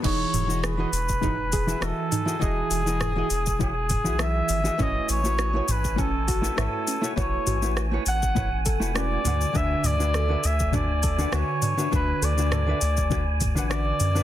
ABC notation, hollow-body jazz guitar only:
X:1
M:4/4
L:1/16
Q:"Swing 16ths" 1/4=101
K:E
V:1 name="Hollow-body jazz guitar"
[E,EFGd]3 [E,EFGd]2 [E,EFGd] z2 [E,EFGc] z2 [E,EFGe] [E,EFdg]3 [E,EFGd] | [E,EFGd]3 [E,EFGd]2 [E,EFGd] z2 [E,EFGc] z2 [E,EFGe] [E,EFGe]3 [E,EFGd] | [A,EFBc]3 [A,EFBc]2 [A,EFBc] z2 [A,EFBc] z2 [A,EFBe] [A,EFBc]3 [A,EFBc] | [A,EFBc]3 [A,EFBc]2 [A,EFBc] z2 [A,EFBc] z2 [A,EFBf] [A,EFBf]2 [=D,=DFBf]2 |
[=D,=DFBe]3 [D,DFBe]2 [D,DFBe] z2 [D,DFB=d] z2 [D,DFBf] [D,DFBe]3 [D,DFBe] | [=D,=DFBe]3 [D,DFBe]2 [D,DFBe] z2 [D,DFB=d] z2 [D,DFBf] [D,DFBe]3 [D,DFBe] |]